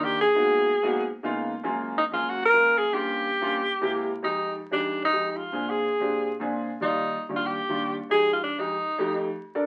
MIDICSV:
0, 0, Header, 1, 3, 480
1, 0, Start_track
1, 0, Tempo, 322928
1, 522, Time_signature, 4, 2, 24, 8
1, 14362, End_track
2, 0, Start_track
2, 0, Title_t, "Tenor saxophone"
2, 0, Program_c, 0, 66
2, 58, Note_on_c, 0, 67, 96
2, 290, Note_off_c, 0, 67, 0
2, 311, Note_on_c, 0, 68, 106
2, 1677, Note_off_c, 0, 68, 0
2, 2938, Note_on_c, 0, 63, 96
2, 3043, Note_off_c, 0, 63, 0
2, 3173, Note_on_c, 0, 65, 94
2, 3408, Note_on_c, 0, 66, 86
2, 3431, Note_off_c, 0, 65, 0
2, 3636, Note_off_c, 0, 66, 0
2, 3645, Note_on_c, 0, 70, 119
2, 4125, Note_on_c, 0, 68, 102
2, 4147, Note_off_c, 0, 70, 0
2, 4366, Note_on_c, 0, 67, 98
2, 4389, Note_off_c, 0, 68, 0
2, 6044, Note_off_c, 0, 67, 0
2, 6306, Note_on_c, 0, 63, 77
2, 6741, Note_off_c, 0, 63, 0
2, 7025, Note_on_c, 0, 62, 82
2, 7461, Note_off_c, 0, 62, 0
2, 7501, Note_on_c, 0, 63, 94
2, 7875, Note_off_c, 0, 63, 0
2, 7875, Note_on_c, 0, 63, 60
2, 7971, Note_on_c, 0, 65, 87
2, 7993, Note_off_c, 0, 63, 0
2, 8463, Note_on_c, 0, 68, 80
2, 8485, Note_off_c, 0, 65, 0
2, 9412, Note_off_c, 0, 68, 0
2, 10142, Note_on_c, 0, 63, 88
2, 10801, Note_off_c, 0, 63, 0
2, 10941, Note_on_c, 0, 65, 85
2, 11086, Note_on_c, 0, 67, 89
2, 11109, Note_off_c, 0, 65, 0
2, 11803, Note_off_c, 0, 67, 0
2, 12053, Note_on_c, 0, 68, 108
2, 12344, Note_off_c, 0, 68, 0
2, 12382, Note_on_c, 0, 65, 87
2, 12520, Note_off_c, 0, 65, 0
2, 12535, Note_on_c, 0, 62, 83
2, 12771, Note_on_c, 0, 63, 81
2, 12793, Note_off_c, 0, 62, 0
2, 13724, Note_off_c, 0, 63, 0
2, 14362, End_track
3, 0, Start_track
3, 0, Title_t, "Grand piano"
3, 0, Program_c, 1, 0
3, 0, Note_on_c, 1, 51, 69
3, 0, Note_on_c, 1, 58, 63
3, 0, Note_on_c, 1, 62, 68
3, 0, Note_on_c, 1, 65, 66
3, 0, Note_on_c, 1, 70, 75
3, 338, Note_off_c, 1, 58, 0
3, 339, Note_off_c, 1, 51, 0
3, 345, Note_off_c, 1, 62, 0
3, 345, Note_off_c, 1, 65, 0
3, 350, Note_off_c, 1, 70, 0
3, 517, Note_on_c, 1, 44, 74
3, 521, Note_on_c, 1, 58, 65
3, 527, Note_on_c, 1, 59, 75
3, 535, Note_on_c, 1, 63, 62
3, 538, Note_on_c, 1, 66, 81
3, 1023, Note_off_c, 1, 44, 0
3, 1025, Note_off_c, 1, 58, 0
3, 1028, Note_off_c, 1, 59, 0
3, 1033, Note_off_c, 1, 63, 0
3, 1034, Note_off_c, 1, 66, 0
3, 1235, Note_on_c, 1, 44, 79
3, 1235, Note_on_c, 1, 58, 82
3, 1241, Note_on_c, 1, 59, 79
3, 1247, Note_on_c, 1, 63, 74
3, 1252, Note_on_c, 1, 66, 94
3, 1478, Note_off_c, 1, 44, 0
3, 1478, Note_off_c, 1, 58, 0
3, 1482, Note_off_c, 1, 59, 0
3, 1484, Note_off_c, 1, 63, 0
3, 1487, Note_off_c, 1, 66, 0
3, 1829, Note_on_c, 1, 49, 88
3, 1834, Note_on_c, 1, 56, 87
3, 1844, Note_on_c, 1, 58, 82
3, 1846, Note_on_c, 1, 59, 74
3, 1848, Note_on_c, 1, 63, 82
3, 1855, Note_on_c, 1, 65, 105
3, 2256, Note_off_c, 1, 49, 0
3, 2258, Note_off_c, 1, 56, 0
3, 2263, Note_off_c, 1, 58, 0
3, 2264, Note_off_c, 1, 59, 0
3, 2265, Note_off_c, 1, 63, 0
3, 2268, Note_off_c, 1, 65, 0
3, 2430, Note_on_c, 1, 42, 91
3, 2436, Note_on_c, 1, 56, 88
3, 2441, Note_on_c, 1, 61, 84
3, 2443, Note_on_c, 1, 58, 86
3, 2449, Note_on_c, 1, 65, 96
3, 2940, Note_off_c, 1, 42, 0
3, 2943, Note_off_c, 1, 56, 0
3, 2946, Note_off_c, 1, 61, 0
3, 2947, Note_off_c, 1, 58, 0
3, 2949, Note_off_c, 1, 65, 0
3, 3144, Note_on_c, 1, 42, 71
3, 3152, Note_on_c, 1, 56, 57
3, 3157, Note_on_c, 1, 58, 61
3, 3166, Note_on_c, 1, 61, 65
3, 3169, Note_on_c, 1, 68, 72
3, 3573, Note_off_c, 1, 42, 0
3, 3577, Note_off_c, 1, 56, 0
3, 3580, Note_off_c, 1, 58, 0
3, 3584, Note_off_c, 1, 61, 0
3, 3586, Note_off_c, 1, 68, 0
3, 3747, Note_on_c, 1, 42, 68
3, 3752, Note_on_c, 1, 56, 65
3, 3760, Note_on_c, 1, 58, 72
3, 3768, Note_on_c, 1, 61, 65
3, 3769, Note_on_c, 1, 65, 76
3, 4175, Note_off_c, 1, 42, 0
3, 4177, Note_off_c, 1, 56, 0
3, 4181, Note_off_c, 1, 58, 0
3, 4185, Note_off_c, 1, 61, 0
3, 4186, Note_off_c, 1, 65, 0
3, 4344, Note_on_c, 1, 43, 69
3, 4355, Note_on_c, 1, 58, 74
3, 4360, Note_on_c, 1, 61, 67
3, 4367, Note_on_c, 1, 65, 87
3, 4857, Note_off_c, 1, 43, 0
3, 4863, Note_off_c, 1, 58, 0
3, 4865, Note_off_c, 1, 61, 0
3, 4869, Note_off_c, 1, 65, 0
3, 5065, Note_on_c, 1, 43, 80
3, 5079, Note_on_c, 1, 58, 73
3, 5081, Note_on_c, 1, 61, 71
3, 5091, Note_on_c, 1, 65, 96
3, 5314, Note_off_c, 1, 43, 0
3, 5321, Note_off_c, 1, 58, 0
3, 5322, Note_off_c, 1, 61, 0
3, 5327, Note_off_c, 1, 65, 0
3, 5671, Note_on_c, 1, 56, 76
3, 5672, Note_on_c, 1, 48, 91
3, 5675, Note_on_c, 1, 58, 74
3, 5684, Note_on_c, 1, 64, 74
3, 5690, Note_on_c, 1, 67, 97
3, 6096, Note_off_c, 1, 56, 0
3, 6097, Note_off_c, 1, 48, 0
3, 6099, Note_off_c, 1, 58, 0
3, 6103, Note_off_c, 1, 64, 0
3, 6106, Note_off_c, 1, 67, 0
3, 6280, Note_on_c, 1, 41, 70
3, 6282, Note_on_c, 1, 56, 69
3, 6293, Note_on_c, 1, 63, 68
3, 6299, Note_on_c, 1, 67, 83
3, 6785, Note_off_c, 1, 41, 0
3, 6786, Note_off_c, 1, 56, 0
3, 6791, Note_off_c, 1, 63, 0
3, 6795, Note_off_c, 1, 67, 0
3, 7001, Note_on_c, 1, 41, 71
3, 7001, Note_on_c, 1, 56, 65
3, 7011, Note_on_c, 1, 63, 60
3, 7017, Note_on_c, 1, 67, 75
3, 7421, Note_off_c, 1, 41, 0
3, 7421, Note_off_c, 1, 56, 0
3, 7426, Note_off_c, 1, 63, 0
3, 7430, Note_off_c, 1, 67, 0
3, 7605, Note_on_c, 1, 41, 65
3, 7612, Note_on_c, 1, 56, 67
3, 7615, Note_on_c, 1, 63, 61
3, 7624, Note_on_c, 1, 67, 77
3, 8024, Note_off_c, 1, 41, 0
3, 8027, Note_off_c, 1, 56, 0
3, 8028, Note_off_c, 1, 63, 0
3, 8033, Note_off_c, 1, 67, 0
3, 8210, Note_on_c, 1, 60, 72
3, 8213, Note_on_c, 1, 46, 78
3, 8222, Note_on_c, 1, 62, 70
3, 8225, Note_on_c, 1, 68, 84
3, 8710, Note_off_c, 1, 60, 0
3, 8711, Note_off_c, 1, 46, 0
3, 8716, Note_off_c, 1, 62, 0
3, 8717, Note_off_c, 1, 68, 0
3, 8917, Note_on_c, 1, 46, 71
3, 8921, Note_on_c, 1, 60, 69
3, 8925, Note_on_c, 1, 62, 62
3, 8940, Note_on_c, 1, 67, 70
3, 9339, Note_off_c, 1, 46, 0
3, 9341, Note_off_c, 1, 60, 0
3, 9343, Note_off_c, 1, 62, 0
3, 9351, Note_off_c, 1, 67, 0
3, 9511, Note_on_c, 1, 46, 92
3, 9523, Note_on_c, 1, 60, 79
3, 9529, Note_on_c, 1, 62, 79
3, 9532, Note_on_c, 1, 68, 94
3, 9936, Note_off_c, 1, 46, 0
3, 9942, Note_off_c, 1, 60, 0
3, 9945, Note_off_c, 1, 62, 0
3, 9946, Note_off_c, 1, 68, 0
3, 10116, Note_on_c, 1, 39, 72
3, 10123, Note_on_c, 1, 55, 68
3, 10131, Note_on_c, 1, 74, 73
3, 10145, Note_on_c, 1, 65, 86
3, 10622, Note_off_c, 1, 39, 0
3, 10626, Note_off_c, 1, 55, 0
3, 10630, Note_off_c, 1, 74, 0
3, 10636, Note_off_c, 1, 65, 0
3, 10838, Note_on_c, 1, 39, 75
3, 10842, Note_on_c, 1, 55, 62
3, 10851, Note_on_c, 1, 62, 62
3, 10858, Note_on_c, 1, 67, 75
3, 11259, Note_off_c, 1, 39, 0
3, 11261, Note_off_c, 1, 55, 0
3, 11265, Note_off_c, 1, 62, 0
3, 11269, Note_off_c, 1, 67, 0
3, 11430, Note_on_c, 1, 39, 77
3, 11435, Note_on_c, 1, 55, 64
3, 11445, Note_on_c, 1, 62, 74
3, 11453, Note_on_c, 1, 65, 75
3, 11855, Note_off_c, 1, 39, 0
3, 11857, Note_off_c, 1, 55, 0
3, 11863, Note_off_c, 1, 62, 0
3, 11866, Note_off_c, 1, 65, 0
3, 12032, Note_on_c, 1, 41, 69
3, 12044, Note_on_c, 1, 56, 73
3, 12044, Note_on_c, 1, 63, 66
3, 12055, Note_on_c, 1, 67, 80
3, 12539, Note_off_c, 1, 41, 0
3, 12545, Note_off_c, 1, 56, 0
3, 12546, Note_off_c, 1, 63, 0
3, 12551, Note_off_c, 1, 67, 0
3, 12754, Note_on_c, 1, 41, 67
3, 12763, Note_on_c, 1, 56, 65
3, 12771, Note_on_c, 1, 63, 64
3, 12775, Note_on_c, 1, 67, 73
3, 12997, Note_off_c, 1, 41, 0
3, 13000, Note_off_c, 1, 56, 0
3, 13005, Note_off_c, 1, 63, 0
3, 13007, Note_off_c, 1, 67, 0
3, 13351, Note_on_c, 1, 41, 89
3, 13363, Note_on_c, 1, 57, 79
3, 13367, Note_on_c, 1, 63, 79
3, 13374, Note_on_c, 1, 67, 92
3, 13775, Note_off_c, 1, 41, 0
3, 13780, Note_off_c, 1, 57, 0
3, 13782, Note_off_c, 1, 63, 0
3, 13786, Note_off_c, 1, 67, 0
3, 14196, Note_on_c, 1, 74, 79
3, 14198, Note_on_c, 1, 70, 73
3, 14199, Note_on_c, 1, 62, 72
3, 14199, Note_on_c, 1, 69, 66
3, 14362, Note_off_c, 1, 62, 0
3, 14362, Note_off_c, 1, 69, 0
3, 14362, Note_off_c, 1, 70, 0
3, 14362, Note_off_c, 1, 74, 0
3, 14362, End_track
0, 0, End_of_file